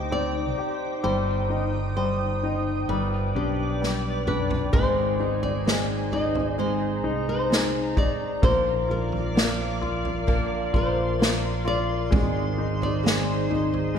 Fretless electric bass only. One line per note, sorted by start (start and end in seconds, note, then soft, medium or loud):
0.00 0.54 D2 medium
1.05 2.86 G1 medium
2.89 3.32 G1 medium
3.35 4.70 B1 medium
4.73 7.05 G#1 medium
7.05 7.93 C2 medium
8.43 10.70 A#1 medium
10.74 12.08 A#1 medium
12.13 13.99 G#1 loud